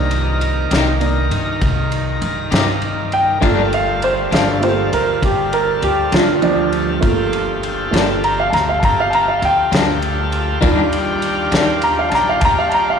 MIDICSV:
0, 0, Header, 1, 7, 480
1, 0, Start_track
1, 0, Key_signature, -2, "minor"
1, 0, Tempo, 600601
1, 2734, Time_signature, 12, 3, 24, 8
1, 10384, End_track
2, 0, Start_track
2, 0, Title_t, "Upright piano"
2, 0, Program_c, 0, 0
2, 0, Note_on_c, 0, 58, 46
2, 0, Note_on_c, 0, 62, 44
2, 0, Note_on_c, 0, 63, 51
2, 790, Note_off_c, 0, 58, 0
2, 795, Note_off_c, 0, 62, 0
2, 798, Note_off_c, 0, 63, 0
2, 802, Note_on_c, 0, 58, 38
2, 807, Note_on_c, 0, 62, 36
2, 810, Note_on_c, 0, 63, 41
2, 1023, Note_off_c, 0, 58, 0
2, 1026, Note_off_c, 0, 62, 0
2, 1027, Note_off_c, 0, 63, 0
2, 2506, Note_on_c, 0, 79, 78
2, 2728, Note_on_c, 0, 57, 49
2, 2733, Note_on_c, 0, 58, 44
2, 2738, Note_on_c, 0, 65, 53
2, 2966, Note_off_c, 0, 79, 0
2, 2991, Note_on_c, 0, 77, 78
2, 3215, Note_off_c, 0, 77, 0
2, 3229, Note_on_c, 0, 72, 77
2, 3419, Note_off_c, 0, 57, 0
2, 3422, Note_off_c, 0, 58, 0
2, 3424, Note_off_c, 0, 65, 0
2, 3454, Note_off_c, 0, 72, 0
2, 3465, Note_on_c, 0, 77, 67
2, 3683, Note_on_c, 0, 57, 39
2, 3688, Note_on_c, 0, 65, 45
2, 3689, Note_on_c, 0, 58, 35
2, 3692, Note_off_c, 0, 77, 0
2, 3704, Note_on_c, 0, 72, 69
2, 3904, Note_off_c, 0, 57, 0
2, 3907, Note_off_c, 0, 58, 0
2, 3907, Note_off_c, 0, 65, 0
2, 3932, Note_off_c, 0, 72, 0
2, 3945, Note_on_c, 0, 70, 61
2, 4172, Note_off_c, 0, 70, 0
2, 4191, Note_on_c, 0, 67, 62
2, 4415, Note_off_c, 0, 67, 0
2, 4425, Note_on_c, 0, 70, 67
2, 4652, Note_off_c, 0, 70, 0
2, 4663, Note_on_c, 0, 67, 70
2, 4891, Note_off_c, 0, 67, 0
2, 4907, Note_on_c, 0, 65, 75
2, 5133, Note_off_c, 0, 65, 0
2, 5133, Note_on_c, 0, 53, 77
2, 5139, Note_on_c, 0, 62, 87
2, 5581, Note_off_c, 0, 53, 0
2, 5601, Note_on_c, 0, 57, 49
2, 5602, Note_off_c, 0, 62, 0
2, 5607, Note_on_c, 0, 58, 45
2, 5612, Note_on_c, 0, 65, 54
2, 6310, Note_off_c, 0, 57, 0
2, 6315, Note_off_c, 0, 58, 0
2, 6319, Note_off_c, 0, 65, 0
2, 6322, Note_on_c, 0, 57, 35
2, 6327, Note_on_c, 0, 58, 35
2, 6331, Note_on_c, 0, 65, 43
2, 6543, Note_off_c, 0, 57, 0
2, 6545, Note_off_c, 0, 58, 0
2, 6548, Note_off_c, 0, 65, 0
2, 6587, Note_on_c, 0, 82, 70
2, 6692, Note_off_c, 0, 82, 0
2, 6711, Note_on_c, 0, 77, 78
2, 6793, Note_on_c, 0, 81, 54
2, 6814, Note_off_c, 0, 77, 0
2, 6820, Note_off_c, 0, 81, 0
2, 6825, Note_on_c, 0, 82, 74
2, 6930, Note_off_c, 0, 82, 0
2, 6948, Note_on_c, 0, 77, 71
2, 7031, Note_on_c, 0, 81, 54
2, 7052, Note_off_c, 0, 77, 0
2, 7059, Note_off_c, 0, 81, 0
2, 7068, Note_on_c, 0, 82, 76
2, 7172, Note_off_c, 0, 82, 0
2, 7196, Note_on_c, 0, 77, 81
2, 7275, Note_on_c, 0, 81, 62
2, 7296, Note_off_c, 0, 77, 0
2, 7302, Note_off_c, 0, 81, 0
2, 7310, Note_on_c, 0, 82, 79
2, 7413, Note_off_c, 0, 82, 0
2, 7419, Note_on_c, 0, 77, 70
2, 7527, Note_off_c, 0, 77, 0
2, 7552, Note_on_c, 0, 79, 78
2, 8472, Note_off_c, 0, 79, 0
2, 8481, Note_on_c, 0, 55, 44
2, 8487, Note_on_c, 0, 62, 39
2, 8494, Note_on_c, 0, 65, 55
2, 9459, Note_on_c, 0, 82, 73
2, 9566, Note_off_c, 0, 82, 0
2, 9582, Note_on_c, 0, 77, 70
2, 9670, Note_on_c, 0, 81, 62
2, 9687, Note_off_c, 0, 77, 0
2, 9697, Note_off_c, 0, 81, 0
2, 9707, Note_on_c, 0, 82, 76
2, 9810, Note_off_c, 0, 82, 0
2, 9825, Note_on_c, 0, 77, 74
2, 9915, Note_on_c, 0, 81, 58
2, 9929, Note_off_c, 0, 77, 0
2, 9941, Note_off_c, 0, 81, 0
2, 9948, Note_on_c, 0, 82, 85
2, 10050, Note_off_c, 0, 82, 0
2, 10060, Note_on_c, 0, 77, 73
2, 10146, Note_on_c, 0, 81, 50
2, 10166, Note_off_c, 0, 77, 0
2, 10173, Note_off_c, 0, 81, 0
2, 10184, Note_on_c, 0, 82, 75
2, 10288, Note_off_c, 0, 82, 0
2, 10310, Note_on_c, 0, 77, 77
2, 10384, Note_off_c, 0, 55, 0
2, 10384, Note_off_c, 0, 62, 0
2, 10384, Note_off_c, 0, 65, 0
2, 10384, Note_off_c, 0, 77, 0
2, 10384, End_track
3, 0, Start_track
3, 0, Title_t, "Tonewheel organ"
3, 0, Program_c, 1, 16
3, 0, Note_on_c, 1, 51, 65
3, 0, Note_on_c, 1, 70, 67
3, 2704, Note_off_c, 1, 51, 0
3, 2704, Note_off_c, 1, 70, 0
3, 2743, Note_on_c, 1, 69, 65
3, 2747, Note_on_c, 1, 55, 61
3, 2749, Note_on_c, 1, 65, 66
3, 5589, Note_off_c, 1, 69, 0
3, 5591, Note_off_c, 1, 55, 0
3, 5592, Note_off_c, 1, 65, 0
3, 5618, Note_on_c, 1, 69, 69
3, 5620, Note_on_c, 1, 67, 67
3, 5623, Note_on_c, 1, 65, 58
3, 8464, Note_off_c, 1, 69, 0
3, 8465, Note_off_c, 1, 67, 0
3, 8466, Note_off_c, 1, 65, 0
3, 8497, Note_on_c, 1, 67, 64
3, 8501, Note_on_c, 1, 62, 65
3, 8501, Note_on_c, 1, 65, 57
3, 10384, Note_off_c, 1, 62, 0
3, 10384, Note_off_c, 1, 65, 0
3, 10384, Note_off_c, 1, 67, 0
3, 10384, End_track
4, 0, Start_track
4, 0, Title_t, "Clean electric guitar"
4, 0, Program_c, 2, 27
4, 567, Note_on_c, 2, 67, 71
4, 573, Note_on_c, 2, 63, 69
4, 576, Note_on_c, 2, 58, 70
4, 583, Note_on_c, 2, 48, 54
4, 714, Note_off_c, 2, 67, 0
4, 717, Note_off_c, 2, 63, 0
4, 719, Note_off_c, 2, 58, 0
4, 722, Note_off_c, 2, 48, 0
4, 2006, Note_on_c, 2, 67, 81
4, 2012, Note_on_c, 2, 63, 66
4, 2016, Note_on_c, 2, 58, 61
4, 2022, Note_on_c, 2, 48, 58
4, 2154, Note_off_c, 2, 67, 0
4, 2157, Note_off_c, 2, 63, 0
4, 2159, Note_off_c, 2, 58, 0
4, 2162, Note_off_c, 2, 48, 0
4, 2726, Note_on_c, 2, 43, 79
4, 2731, Note_on_c, 2, 53, 70
4, 2737, Note_on_c, 2, 58, 85
4, 2744, Note_on_c, 2, 62, 88
4, 2874, Note_off_c, 2, 43, 0
4, 2876, Note_off_c, 2, 53, 0
4, 2880, Note_off_c, 2, 58, 0
4, 2883, Note_off_c, 2, 62, 0
4, 3447, Note_on_c, 2, 62, 61
4, 3453, Note_on_c, 2, 58, 58
4, 3457, Note_on_c, 2, 53, 54
4, 3461, Note_on_c, 2, 43, 52
4, 3594, Note_off_c, 2, 62, 0
4, 3597, Note_off_c, 2, 58, 0
4, 3600, Note_off_c, 2, 53, 0
4, 3602, Note_off_c, 2, 43, 0
4, 4892, Note_on_c, 2, 62, 59
4, 4898, Note_on_c, 2, 58, 66
4, 4904, Note_on_c, 2, 53, 55
4, 4911, Note_on_c, 2, 43, 58
4, 5037, Note_off_c, 2, 62, 0
4, 5040, Note_off_c, 2, 58, 0
4, 5043, Note_off_c, 2, 53, 0
4, 5046, Note_off_c, 2, 43, 0
4, 6334, Note_on_c, 2, 62, 70
4, 6341, Note_on_c, 2, 58, 74
4, 6344, Note_on_c, 2, 53, 70
4, 6348, Note_on_c, 2, 43, 58
4, 6477, Note_off_c, 2, 62, 0
4, 6480, Note_off_c, 2, 58, 0
4, 6482, Note_off_c, 2, 53, 0
4, 6484, Note_off_c, 2, 43, 0
4, 7763, Note_on_c, 2, 62, 64
4, 7770, Note_on_c, 2, 58, 61
4, 7775, Note_on_c, 2, 53, 56
4, 7777, Note_on_c, 2, 43, 55
4, 7911, Note_off_c, 2, 62, 0
4, 7914, Note_off_c, 2, 58, 0
4, 7917, Note_off_c, 2, 53, 0
4, 7918, Note_off_c, 2, 43, 0
4, 8478, Note_on_c, 2, 51, 84
4, 8486, Note_on_c, 2, 55, 83
4, 8490, Note_on_c, 2, 58, 82
4, 8492, Note_on_c, 2, 62, 82
4, 8628, Note_off_c, 2, 51, 0
4, 8632, Note_off_c, 2, 55, 0
4, 8634, Note_off_c, 2, 58, 0
4, 8635, Note_off_c, 2, 62, 0
4, 9200, Note_on_c, 2, 62, 79
4, 9204, Note_on_c, 2, 58, 70
4, 9208, Note_on_c, 2, 55, 59
4, 9209, Note_on_c, 2, 51, 65
4, 9348, Note_off_c, 2, 62, 0
4, 9350, Note_off_c, 2, 58, 0
4, 9352, Note_off_c, 2, 55, 0
4, 9353, Note_off_c, 2, 51, 0
4, 10384, End_track
5, 0, Start_track
5, 0, Title_t, "Pipe organ"
5, 0, Program_c, 3, 19
5, 8486, Note_on_c, 3, 62, 60
5, 8488, Note_on_c, 3, 51, 65
5, 8489, Note_on_c, 3, 55, 59
5, 10384, Note_off_c, 3, 51, 0
5, 10384, Note_off_c, 3, 55, 0
5, 10384, Note_off_c, 3, 62, 0
5, 10384, End_track
6, 0, Start_track
6, 0, Title_t, "Upright bass"
6, 0, Program_c, 4, 32
6, 0, Note_on_c, 4, 36, 84
6, 539, Note_off_c, 4, 36, 0
6, 569, Note_on_c, 4, 36, 83
6, 1019, Note_off_c, 4, 36, 0
6, 1049, Note_on_c, 4, 43, 87
6, 1272, Note_off_c, 4, 43, 0
6, 1289, Note_on_c, 4, 36, 83
6, 1739, Note_off_c, 4, 36, 0
6, 1772, Note_on_c, 4, 43, 85
6, 1994, Note_off_c, 4, 43, 0
6, 2012, Note_on_c, 4, 43, 92
6, 2701, Note_off_c, 4, 43, 0
6, 2736, Note_on_c, 4, 31, 101
6, 3423, Note_off_c, 4, 31, 0
6, 3455, Note_on_c, 4, 31, 99
6, 3902, Note_off_c, 4, 31, 0
6, 3937, Note_on_c, 4, 38, 85
6, 4156, Note_off_c, 4, 38, 0
6, 4175, Note_on_c, 4, 31, 88
6, 4622, Note_off_c, 4, 31, 0
6, 4654, Note_on_c, 4, 38, 85
6, 4875, Note_off_c, 4, 38, 0
6, 4894, Note_on_c, 4, 38, 94
6, 5581, Note_off_c, 4, 38, 0
6, 5616, Note_on_c, 4, 31, 94
6, 6302, Note_off_c, 4, 31, 0
6, 6336, Note_on_c, 4, 31, 84
6, 6782, Note_off_c, 4, 31, 0
6, 6814, Note_on_c, 4, 38, 90
6, 7034, Note_off_c, 4, 38, 0
6, 7056, Note_on_c, 4, 31, 80
6, 7502, Note_off_c, 4, 31, 0
6, 7529, Note_on_c, 4, 38, 82
6, 7751, Note_off_c, 4, 38, 0
6, 7768, Note_on_c, 4, 38, 94
6, 8456, Note_off_c, 4, 38, 0
6, 8493, Note_on_c, 4, 39, 91
6, 9179, Note_off_c, 4, 39, 0
6, 9206, Note_on_c, 4, 39, 93
6, 9655, Note_off_c, 4, 39, 0
6, 9685, Note_on_c, 4, 34, 76
6, 9907, Note_off_c, 4, 34, 0
6, 9922, Note_on_c, 4, 39, 82
6, 10372, Note_off_c, 4, 39, 0
6, 10384, End_track
7, 0, Start_track
7, 0, Title_t, "Drums"
7, 87, Note_on_c, 9, 51, 61
7, 167, Note_off_c, 9, 51, 0
7, 329, Note_on_c, 9, 51, 59
7, 409, Note_off_c, 9, 51, 0
7, 568, Note_on_c, 9, 51, 72
7, 585, Note_on_c, 9, 38, 84
7, 648, Note_off_c, 9, 51, 0
7, 665, Note_off_c, 9, 38, 0
7, 806, Note_on_c, 9, 51, 55
7, 886, Note_off_c, 9, 51, 0
7, 1050, Note_on_c, 9, 51, 63
7, 1130, Note_off_c, 9, 51, 0
7, 1291, Note_on_c, 9, 36, 100
7, 1291, Note_on_c, 9, 51, 79
7, 1371, Note_off_c, 9, 36, 0
7, 1371, Note_off_c, 9, 51, 0
7, 1532, Note_on_c, 9, 51, 52
7, 1612, Note_off_c, 9, 51, 0
7, 1772, Note_on_c, 9, 51, 58
7, 1852, Note_off_c, 9, 51, 0
7, 2013, Note_on_c, 9, 51, 76
7, 2029, Note_on_c, 9, 38, 103
7, 2093, Note_off_c, 9, 51, 0
7, 2109, Note_off_c, 9, 38, 0
7, 2251, Note_on_c, 9, 51, 46
7, 2331, Note_off_c, 9, 51, 0
7, 2494, Note_on_c, 9, 51, 48
7, 2574, Note_off_c, 9, 51, 0
7, 2736, Note_on_c, 9, 36, 107
7, 2738, Note_on_c, 9, 51, 82
7, 2815, Note_off_c, 9, 36, 0
7, 2818, Note_off_c, 9, 51, 0
7, 2978, Note_on_c, 9, 51, 53
7, 3058, Note_off_c, 9, 51, 0
7, 3215, Note_on_c, 9, 51, 57
7, 3295, Note_off_c, 9, 51, 0
7, 3455, Note_on_c, 9, 51, 66
7, 3472, Note_on_c, 9, 38, 90
7, 3535, Note_off_c, 9, 51, 0
7, 3552, Note_off_c, 9, 38, 0
7, 3697, Note_on_c, 9, 51, 55
7, 3777, Note_off_c, 9, 51, 0
7, 3939, Note_on_c, 9, 51, 65
7, 4019, Note_off_c, 9, 51, 0
7, 4176, Note_on_c, 9, 36, 91
7, 4176, Note_on_c, 9, 51, 80
7, 4256, Note_off_c, 9, 36, 0
7, 4256, Note_off_c, 9, 51, 0
7, 4417, Note_on_c, 9, 51, 57
7, 4497, Note_off_c, 9, 51, 0
7, 4655, Note_on_c, 9, 51, 61
7, 4735, Note_off_c, 9, 51, 0
7, 4893, Note_on_c, 9, 51, 79
7, 4910, Note_on_c, 9, 38, 102
7, 4973, Note_off_c, 9, 51, 0
7, 4990, Note_off_c, 9, 38, 0
7, 5133, Note_on_c, 9, 51, 54
7, 5213, Note_off_c, 9, 51, 0
7, 5375, Note_on_c, 9, 51, 57
7, 5455, Note_off_c, 9, 51, 0
7, 5614, Note_on_c, 9, 51, 78
7, 5615, Note_on_c, 9, 36, 116
7, 5694, Note_off_c, 9, 51, 0
7, 5695, Note_off_c, 9, 36, 0
7, 5857, Note_on_c, 9, 51, 53
7, 5937, Note_off_c, 9, 51, 0
7, 6100, Note_on_c, 9, 51, 55
7, 6180, Note_off_c, 9, 51, 0
7, 6343, Note_on_c, 9, 51, 64
7, 6359, Note_on_c, 9, 38, 86
7, 6422, Note_off_c, 9, 51, 0
7, 6439, Note_off_c, 9, 38, 0
7, 6583, Note_on_c, 9, 51, 55
7, 6663, Note_off_c, 9, 51, 0
7, 6818, Note_on_c, 9, 51, 59
7, 6835, Note_on_c, 9, 38, 27
7, 6898, Note_off_c, 9, 51, 0
7, 6915, Note_off_c, 9, 38, 0
7, 7055, Note_on_c, 9, 36, 97
7, 7058, Note_on_c, 9, 51, 74
7, 7135, Note_off_c, 9, 36, 0
7, 7138, Note_off_c, 9, 51, 0
7, 7296, Note_on_c, 9, 51, 53
7, 7376, Note_off_c, 9, 51, 0
7, 7531, Note_on_c, 9, 51, 59
7, 7611, Note_off_c, 9, 51, 0
7, 7772, Note_on_c, 9, 51, 76
7, 7789, Note_on_c, 9, 38, 106
7, 7852, Note_off_c, 9, 51, 0
7, 7869, Note_off_c, 9, 38, 0
7, 8011, Note_on_c, 9, 51, 55
7, 8090, Note_off_c, 9, 51, 0
7, 8250, Note_on_c, 9, 51, 57
7, 8330, Note_off_c, 9, 51, 0
7, 8491, Note_on_c, 9, 36, 111
7, 8491, Note_on_c, 9, 51, 81
7, 8571, Note_off_c, 9, 36, 0
7, 8571, Note_off_c, 9, 51, 0
7, 8732, Note_on_c, 9, 51, 66
7, 8812, Note_off_c, 9, 51, 0
7, 8968, Note_on_c, 9, 51, 63
7, 9048, Note_off_c, 9, 51, 0
7, 9206, Note_on_c, 9, 51, 72
7, 9223, Note_on_c, 9, 38, 84
7, 9286, Note_off_c, 9, 51, 0
7, 9303, Note_off_c, 9, 38, 0
7, 9444, Note_on_c, 9, 51, 59
7, 9524, Note_off_c, 9, 51, 0
7, 9683, Note_on_c, 9, 51, 63
7, 9699, Note_on_c, 9, 38, 32
7, 9763, Note_off_c, 9, 51, 0
7, 9779, Note_off_c, 9, 38, 0
7, 9919, Note_on_c, 9, 51, 83
7, 9923, Note_on_c, 9, 36, 102
7, 9999, Note_off_c, 9, 51, 0
7, 10003, Note_off_c, 9, 36, 0
7, 10162, Note_on_c, 9, 51, 51
7, 10242, Note_off_c, 9, 51, 0
7, 10384, End_track
0, 0, End_of_file